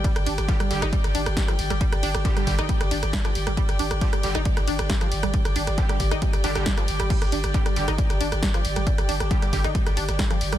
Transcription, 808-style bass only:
\new Staff \with { instrumentName = "808-style bass" } { \clef bass \time 4/4 \key c \minor \tempo 4 = 136 r16 g,,16 g,,16 g,,16 r8 g,,16 g,,16 r16 g,,16 g,,16 g,,16 r8 g,,16 g,,16 | r16 g,,16 g,,16 g,,16 r8 g,,16 g,,16 r16 g,,16 g,,16 g,,16 r8 g,,16 g,,16 | r16 g,,16 g,,16 g,,16 r8 g,,16 g,,16 r16 g,,16 g,,16 g,,16 r8 g,,16 g,,16 | r16 g,,16 g,,16 g,,16 r8 g,,16 g,,16 r16 g,,16 g,,16 g,,16 r8 g,,16 g,,16 |
r16 g,,16 g,,16 g,,16 r8 g,,16 g,,16 r16 g,,16 g,,16 g,,16 r8 g,,16 g,,16 | r16 g,,16 g,,16 g,,16 r8 g,,16 g,,16 r16 g,,16 g,,16 g,,16 r8 g,,16 g,,16 | }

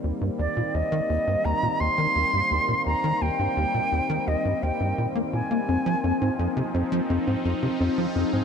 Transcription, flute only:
\new Staff \with { instrumentName = "Flute" } { \time 4/4 \key ees \major \tempo 4 = 85 r8 d''8 ees''4 bes''8 c'''4. | bes''8 g''4. ees''8 g''8 r8 aes''8~ | aes''4. r2 r8 | }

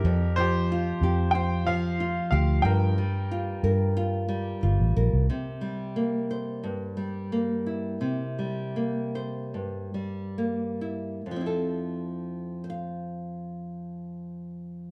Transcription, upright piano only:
\new Staff \with { instrumentName = "Upright piano" } { \time 4/4 \key c \mixolydian \tempo 4 = 89 << { bes'8 c''4. g''8 f''4 f''8 | g''2. r4 | r1 | r1 |
r1 | } \\ { g'8 g'4. c''2 | bes'2. r4 | r1 | r1 |
r1 | } >> }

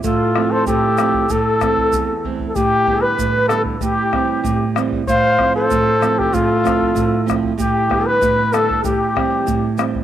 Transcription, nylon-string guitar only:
\new Staff \with { instrumentName = "Nylon-string guitar" } { \clef bass \time 2/4 \key f \lydian \tempo 4 = 96 a,8 <f a c'>8 a,8 <f a c'>8 | a,8 <e a c'>8 e,8 <e a c'>8 | a,8 <d g b>8 a,8 <d g b>8 | a,8 <e g c'>8 a,8 <e g c'>8 |
a,8 <f a c'>8 a,8 <f a c'>8 | a,8 <f a c'>8 a,8 <f a c'>8 | a,8 <d g b>8 a,8 <d g b>8 | a,8 <e g c'>8 a,8 <e g c'>8 | }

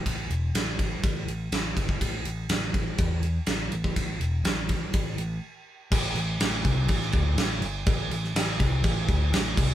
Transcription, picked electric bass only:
\new Staff \with { instrumentName = "Picked electric bass" } { \clef bass \time 4/4 \key a \minor \tempo 4 = 123 a,,8 e,,8 a,,4 a,,8 a,,8 a,,8 g,,8 | a,,8 a,,8 a,,4 e,4 a,,8 a,,8 | a,,8 e,,8 a,,4 a,,8 a,,8 r4 | a,,8 a,,8 a,,8 c,8 a,,8 d,8 a,,8 g,,8 |
a,,8 a,,8 a,,8 c,8 a,,8 d,8 a,,8 c,8 | }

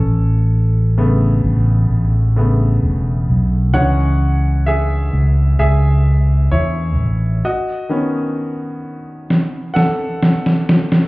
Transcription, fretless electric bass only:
\new Staff \with { instrumentName = "Fretless electric bass" } { \clef bass \time 4/4 \key a \lydian \tempo 4 = 65 a,,4. a,,8 a,,4 e,,8 b,,8 | cis,4. cis,8 cis,4 e,8 a,,8 | r1 | }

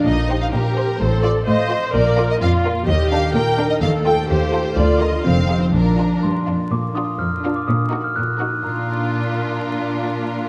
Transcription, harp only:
\new Staff \with { instrumentName = "Harp" } { \time 2/4 \key bes \major \tempo 4 = 126 \tuplet 3/2 { <bes, bes'>8 c'8 c''8 g''8 c''8 c'8 } | \tuplet 3/2 { a,8 c'8 c''8 f''4 c'8 } | \tuplet 3/2 { bes,8 bes8 d''8 f''8 d''8 bes8 } | \tuplet 3/2 { ees8 ees'8 bes'8 d'''8 bes'8 ees'8 } |
\tuplet 3/2 { ees8 a8 c''8 f''8 c''8 a8 } | \tuplet 3/2 { d8 bes8 <f' bes'>8 f8 ees'8 <ees' g'>8 } | \tuplet 3/2 { bes,8 bes8 f'8 d''8 f'8 bes8 } | \tuplet 3/2 { bes,8 bes8 f'8 bes'8 f'8 d'8 } |
\tuplet 3/2 { bes,8 bes8 ges'8 bes'8 ges'8 ees'8 } | <bes, bes d' f' d''>2~ | <bes, bes d' f' d''>2 | }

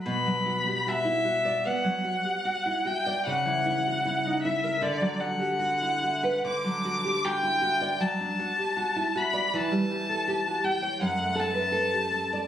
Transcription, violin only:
\new Staff \with { instrumentName = "Violin" } { \time 4/4 \key b \minor \tempo 4 = 77 b''4 e''4 fis''4. g''8 | fis''4. e''8 d''8 fis''4. | d'''4 g''4 a''4. b''8 | a''4. g''8 fis''8 a''4. | }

